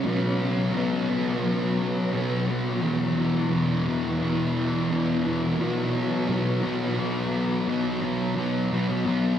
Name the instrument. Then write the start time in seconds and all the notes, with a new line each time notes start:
distorted electric guitar
0.05 B2 F#3 B3
0.74 B2 F#3 B3
1.09 F#3 B3
2.13 B2 F#3 B3
2.47 F#3 B3
2.82 E2 B2 E3
3.51 E2 B2 E3
3.85 B2 E3
4.89 E2 B2 E3
5.25 B2 E3
5.58 B2 F#3
5.62 B3
6.28 B2 F#3 B3
6.63 F#3 B3
7.67 B2 F#3 B3
8.01 F#3 B3
8.36 B2 F#3 B3
8.71 B2 F#3 B3
8.88 F#3 B3
9.05 B2 F#3 B3